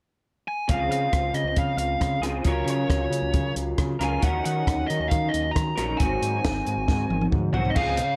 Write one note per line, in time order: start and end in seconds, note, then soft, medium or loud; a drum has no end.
0.48 0.68 G#5 medium
0.68 0.86 C#2 medium
0.68 2.22 C#3 medium
0.68 2.23 G#3 medium
0.68 2.22 C4 medium
0.68 2.21 F4 medium
0.68 0.91 F5 medium
0.68 kick medium
0.68 closed hi-hat medium
0.72 2.21 G#4 medium
0.89 1.07 C#3 medium
0.89 1.37 F5 medium
0.89 closed hi-hat medium
1.13 1.30 C#2 medium
1.13 kick medium
1.13 cross-stick medium
1.13 closed hi-hat medium
1.34 1.43 C#3 medium
1.34 1.58 D#5 medium
1.34 closed hi-hat medium
1.44 1.53 C#2 medium
1.56 1.74 C#3 medium
1.56 1.77 F5 medium
1.56 kick medium
1.56 closed hi-hat medium
1.77 1.95 C#2 medium
1.77 2.20 F5 medium
1.77 closed hi-hat medium
2.01 2.18 C#3 medium
2.01 kick medium
2.01 cross-stick medium
2.01 closed hi-hat medium
2.21 2.39 C#2 medium
2.21 2.43 G#3 medium
2.21 2.44 C4 medium
2.21 2.44 F4 medium
2.21 2.44 G#4 medium
2.21 cross-stick medium
2.21 closed hi-hat medium
2.25 2.42 C#3 medium
2.43 2.62 C#2 medium
2.43 3.98 C#3 medium
2.43 4.02 F#3 medium
2.43 3.98 C#4 medium
2.43 3.99 F4 medium
2.43 3.98 A#4 medium
2.43 kick medium
2.43 closed hi-hat medium
2.48 2.70 C#5 medium
2.66 2.84 C#3 medium
2.66 closed hi-hat medium
2.71 3.54 C#5 medium
2.89 3.06 C#2 medium
2.89 kick medium
2.89 cross-stick medium
2.89 closed hi-hat medium
3.10 3.20 C#3 medium
3.10 closed hi-hat medium
3.22 3.31 C#2 medium
3.34 3.51 C#3 medium
3.34 kick loud
3.34 closed hi-hat medium
3.56 3.73 C#2 medium
3.56 closed hi-hat soft
3.78 3.95 C#3 medium
3.78 kick medium
3.78 cross-stick medium
3.78 closed hi-hat medium
3.99 4.17 C#2 medium
3.99 4.21 C#3 medium
3.99 4.22 F#3 medium
3.99 4.22 C#4 medium
3.99 4.21 F4 medium
3.99 4.21 A#4 medium
3.99 cross-stick medium
3.99 closed hi-hat medium
4.04 4.23 G#5 medium
4.21 4.40 D#2 medium
4.21 5.75 D#3 medium
4.21 5.75 F#3 medium
4.21 5.76 C#4 medium
4.21 5.76 D#4 medium
4.21 5.74 A#4 medium
4.21 4.44 F#5 medium
4.21 kick medium
4.21 closed hi-hat medium
4.45 4.62 D#3 medium
4.45 4.90 F#5 medium
4.45 closed hi-hat medium
4.67 4.84 D#2 medium
4.67 kick medium
4.67 cross-stick medium
4.67 closed hi-hat medium
4.87 4.98 D#3 medium
4.87 5.09 D#5 medium
4.87 closed hi-hat medium
5.00 5.08 D#2 medium
5.08 5.28 D#3 medium
5.08 5.32 F5 medium
5.08 closed hi-hat medium
5.12 kick medium
5.29 5.51 D#5 medium
5.34 5.50 D#2 medium
5.34 closed hi-hat medium
5.51 5.72 D#3 medium
5.51 5.99 A#5 medium
5.56 kick medium
5.56 cross-stick medium
5.56 closed hi-hat medium
5.76 5.94 A#1 medium
5.76 5.99 D#3 medium
5.76 5.98 F#3 medium
5.76 5.98 C#4 medium
5.76 5.98 D#4 medium
5.76 5.97 A#4 medium
5.76 cross-stick medium
5.76 closed hi-hat medium
5.97 6.17 G#1 medium
5.97 7.52 G#2 medium
5.97 7.52 D#3 medium
5.97 7.52 F#3 medium
5.97 7.53 C4 medium
5.97 7.27 G#5 medium
5.97 kick medium
5.97 closed hi-hat medium
6.02 7.53 F#4 medium
6.22 6.38 G#2 medium
6.22 closed hi-hat medium
6.45 6.61 G#1 medium
6.45 kick medium
6.45 snare loud
6.45 closed hi-hat medium
6.67 6.75 G#2 medium
6.67 closed hi-hat medium
6.77 6.85 G#1 medium
6.88 7.05 G#2 medium
6.88 kick medium
6.88 snare soft
7.09 7.26 G#1 medium
7.09 high tom medium
7.21 high tom medium
7.32 7.48 G#2 medium
7.32 kick medium
7.32 mid tom medium
7.53 7.70 C2 medium
7.53 7.76 D#3 medium
7.53 7.76 F#3 medium
7.53 7.75 C4 medium
7.53 7.74 F#4 medium
7.53 7.69 F#5 medium
7.53 floor tom medium
7.57 7.76 G#2 medium
7.65 floor tom medium
7.70 7.76 D#5 medium
7.75 7.99 C#2 medium
7.75 7.98 G#3 medium
7.75 7.98 C4 medium
7.75 7.98 F4 medium
7.75 7.97 G#4 medium
7.75 8.16 F5 medium
7.75 kick medium
7.75 crash medium
7.97 8.15 C#3 medium
7.97 muted clean electric guitar stroke soft
7.97 closed hi-hat medium